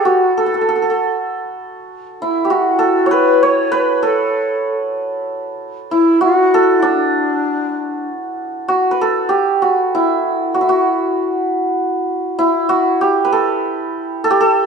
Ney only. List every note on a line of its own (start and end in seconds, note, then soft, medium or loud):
0.06 0.37 F#4 medium
0.38 1.03 A4 medium
2.21 2.53 E4 medium
2.51 3.15 F#4 medium
3.13 3.45 B4 medium
3.43 3.78 C#5 medium
3.77 4.09 B4 medium
4.07 4.76 A4 medium
5.92 6.20 E4 medium
6.23 6.81 F#4 medium
6.80 6.88 E4 soft
6.86 8.08 D4 medium